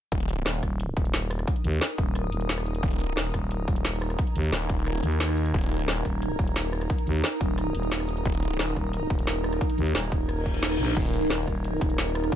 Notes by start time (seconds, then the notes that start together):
0.12 D#1 D#4, kick, closed hi-hat
0.20 closed hi-hat
0.29 closed hi-hat
0.35 A#4
0.46 D#1, snare, closed hi-hat
0.62 D#1 A#5, kick, cross-stick, closed hi-hat
0.78 D#6, closed hi-hat
0.97 D#1, kick, closed hi-hat
1.05 closed hi-hat
1.14 snare, closed hi-hat
1.31 cross-stick, closed hi-hat
1.39 cross-stick, closed hi-hat
1.48 kick, closed hi-hat
1.56 closed hi-hat
1.64 D#2, closed hi-hat
1.81 snare, closed hi-hat
1.98 D#1, kick, closed hi-hat
2.15 cross-stick, closed hi-hat
2.32 D#1, closed hi-hat
2.41 closed hi-hat
2.49 snare, closed hi-hat
2.58 cross-stick
2.66 closed hi-hat
2.75 closed hi-hat
2.83 D#1, kick, closed hi-hat
2.92 closed hi-hat
3.00 closed hi-hat
3.17 D#1, snare, closed hi-hat
3.34 D#1, kick, cross-stick, closed hi-hat
3.50 G#6, closed hi-hat
3.68 D#1, kick, closed hi-hat
3.76 closed hi-hat
3.85 snare, closed hi-hat
4.02 cross-stick, closed hi-hat
4.10 cross-stick, closed hi-hat
4.19 kick, closed hi-hat
4.27 closed hi-hat
4.36 D#2, closed hi-hat
4.53 D#1, snare, closed hi-hat
4.69 kick, closed hi-hat
4.86 cross-stick, closed hi-hat
5.03 D#2, closed hi-hat
5.12 closed hi-hat
5.20 snare, closed hi-hat
5.29 cross-stick
5.37 closed hi-hat
5.46 closed hi-hat
5.54 D#1, kick, closed hi-hat
5.63 closed hi-hat
5.71 closed hi-hat
5.88 D#1, snare, closed hi-hat
6.05 D#1, kick, cross-stick, closed hi-hat
6.21 D#6, closed hi-hat
6.39 D#1, kick, closed hi-hat
6.47 closed hi-hat
6.56 snare, closed hi-hat
6.73 cross-stick, closed hi-hat
6.81 cross-stick, closed hi-hat
6.90 kick, closed hi-hat
6.98 closed hi-hat
7.07 D#2, closed hi-hat
7.24 snare, closed hi-hat
7.41 D#1, kick, closed hi-hat
7.58 cross-stick, closed hi-hat
7.75 D#1, closed hi-hat
7.83 closed hi-hat
7.92 snare, closed hi-hat
8.00 cross-stick
8.09 closed hi-hat
8.17 closed hi-hat
8.25 D#1, kick, closed hi-hat
8.34 closed hi-hat
8.42 closed hi-hat
8.59 D#1, snare, closed hi-hat
8.76 D#1, kick, cross-stick, closed hi-hat
8.92 G#6, closed hi-hat
9.10 D#1, kick, closed hi-hat
9.19 closed hi-hat
9.27 snare, closed hi-hat
9.44 cross-stick, closed hi-hat
9.53 cross-stick, closed hi-hat
9.61 kick, closed hi-hat
9.70 closed hi-hat
9.78 D#2, closed hi-hat
9.86 closed hi-hat
9.95 D#1, snare, closed hi-hat
10.12 kick, closed hi-hat
10.29 cross-stick, closed hi-hat, reverse cymbal
10.46 kick, closed hi-hat
10.54 closed hi-hat
10.63 snare, closed hi-hat
10.71 cross-stick
10.80 A#1, closed hi-hat
10.88 closed hi-hat
10.97 D#1, kick, closed hi-hat, crash
11.05 closed hi-hat
11.14 closed hi-hat
11.30 D#1, snare, closed hi-hat
11.47 D#1, kick, cross-stick, closed hi-hat
11.63 D#6, closed hi-hat
11.81 D#1, kick, closed hi-hat
11.90 closed hi-hat
11.98 snare, closed hi-hat
12.15 cross-stick, closed hi-hat
12.24 cross-stick, closed hi-hat
12.32 kick, closed hi-hat